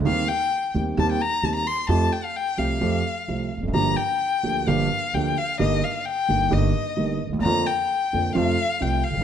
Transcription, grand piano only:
\new Staff \with { instrumentName = "Grand piano" } { \clef bass \time 4/4 \key f \mixolydian \tempo 4 = 130 <ees, ees g c' g'>8 r4 <ees, ees g c' g'>8 <ees, ees g c' g'>8 r8 <ees, ees g c' g'>8 r8 | <f, f a c' g'>8 r4 <c, c f a c' g'>8 <f, f a c' g'>8 r8 <c, c f a c' g'>8 r32 e,32 f,32 ges,32 | <g,, g, f bes d' g'>8 r4 <d, d f bes d' g'>8 <g,, g, f bes d' g'>8 r8 <d, d f bes d' g'>8 r8 | <g,, g, ees g bes g'>8 r4 <g,, g, ees g bes g'>8 <g,, g, ees g bes g'>8 r8 <g,, g, ees g bes g'>8 r32 d,32 ees,32 e,32 |
<f, d f bes f'>8 r4 <f, d f bes f'>8 <f, c f a f'>8 r8 <c, c f a f'>8 r32 g,,32 aes,,32 r32 | }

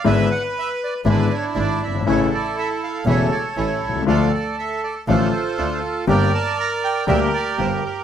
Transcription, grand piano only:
\new Staff \with { instrumentName = "Grand piano" } { \clef bass \time 4/4 \key d \minor \tempo 4 = 120 <gis,, gis, d gis b e'>8 r4. <gis,, gis, d gis b e'>8 r8 <gis,, gis,>8 r32 fis,,32 g,,32 gis,,32 | <a,, a, cis e a e'>8 r4. <e,, e, cis e a e'>8 r8 <a,, a,>8 r32 b,,32 c,32 cis,32 | <d, d f a f'>8 r4. <a,, a, d f a f'>8 r8 <d, d>8 r8 | <g,, g, d g bes g'>8 r4. <d, d g bes g'>8 r8 <g,, g,>8 r8 | }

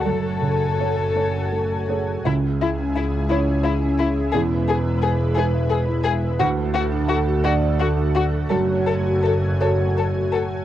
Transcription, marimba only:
\new Staff \with { instrumentName = "Marimba" } { \time 6/8 \key fis \minor \tempo 4. = 57 r2. | cis'16 gis'16 gis'16 cis'16 gis'16 e'16 cis'16 cis''16 gis'16 cis'16 cis''16 gis'16 | e'16 b'16 b'16 e'16 b'16 gis'16 e'16 e''16 b'16 e'16 e''16 b'16 | d'16 a'16 a'16 d'16 a'16 fis'16 d'16 d''16 a'16 d'16 d''16 a'16 |
fis'16 cis''16 r16 fis'16 cis''16 r16 fis'16 fis''16 cis''16 fis'16 fis''16 cis''16 | }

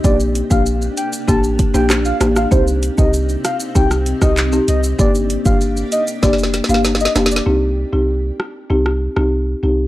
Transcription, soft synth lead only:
\new Staff \with { instrumentName = "Soft synth lead" } { \time 4/4 \key c \minor \tempo 4 = 97 d''16 r8 f''16 r8 g''16 r16 a''16 r8 g''16 r16 f''16 r16 f''16 | c''16 r8 ees''16 r8 f''16 r16 g''16 r8 ees''16 r8 ees''16 r16 | d''16 r8 f''16 r8 ees''16 r16 d''16 r8 f''16 r16 ees''16 r16 d''16 | r1 | }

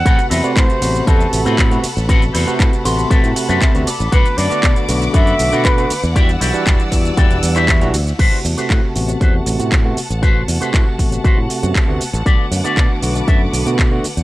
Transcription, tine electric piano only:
\new Staff \with { instrumentName = "Tine electric piano" } { \time 4/4 \key a \dorian \tempo 4 = 118 <c a fis' b'>8. <c a fis' b'>8. <c a b fis'>8 <c a fis' b'>8. <c a b fis'>8 <c a b fis'>16 r8 | <c a fis' b'>8. <c a fis' b'>8. <c a b fis'>8 <c a fis'>8. <c a b fis'>8 <c a b fis'>16 r8 | <d a b fis'>8. <d a b fis'>8. <d a b fis'>8 <d a b fis'>8. <d a b fis'>8 <d a b fis'>16 r8 | <e g d' fis''>8. <e g d' fis''>8. <e g d' fis'>8 <e g d' fis''>8. <e g d' fis'>8 <e g d' fis'>16 r8 |
<c a fis'>8. <c a fis'>8. <c a b fis'>8 <c a fis'>8. <c a b fis'>8 <c a b fis'>16 r8 | <c a fis'>8. <c a fis'>8. <c a b fis'>8 <c a fis'>8. <c a b fis'>8 <c a b fis'>16 r8 | <d a b fis'>8. <d a b fis'>8. <d a b fis'>8 <d a b fis'>8. <d a b fis'>8 <d a b fis'>16 r8 | }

